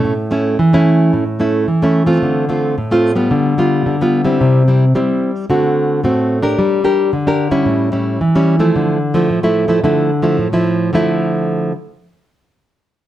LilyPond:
\new Staff \with { instrumentName = "Nylon-string guitar" } { \time 4/4 \key d \minor \tempo 4 = 110 << { <a cis' e'>16 r16 <a cis' e'>8 r16 <a cis' e'>4 r16 <a cis' e'>8 r16 <a cis' e'>8 <a c' f'>16~ | <a c' f'>8 <a c' f'>8 r16 <a c' f'>8 <g b f'>8. <g b f'>8. <g b f'>8 <g c' e'>16~ | <g c' e'>8 <g c' e'>16 r16 <g c' e'>8. r16 <a c' fis'>4 <a c' fis'>8. <d' g' bes'>16~ | <d' g' bes'>8 <d' g' bes'>8 r16 <d' g' bes'>8 <g cis' e'>8. <g cis' e'>8 r16 <g cis' e'>8 <f a e'>16~ |
<f a e'>8 r16 <f a e'>8 <f a e'>8 <f a e'>16 <f a e'>8 r16 <f a e'>8 <f a e'>8. | <d f a e'>8 r2. r8 | } \\ { a,4 e4 a,4 e4 | d4 a,4 d4 d4 | c4 g4 d4 a,4 | g4 d4 a,4 e4 |
d4 a,4 d4 a,4 | r1 | } >> }